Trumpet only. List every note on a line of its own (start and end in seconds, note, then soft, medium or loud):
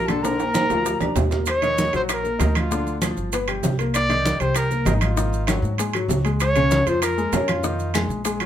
0.08 0.25 A4 medium
0.23 1.17 A#4 medium
1.49 1.92 C#5 loud
1.96 2.03 C5 medium
2.13 2.55 A#4 medium
2.59 3.00 F4 medium
3.95 4.42 D5 loud
4.41 4.56 C5 medium
4.57 4.93 A#4 medium
4.96 5.04 D#4 soft
5.03 5.49 F4 medium
6.42 6.89 C#5 loud
6.88 7.02 C5 medium
7.03 7.51 A#4 medium
7.50 7.95 F4 medium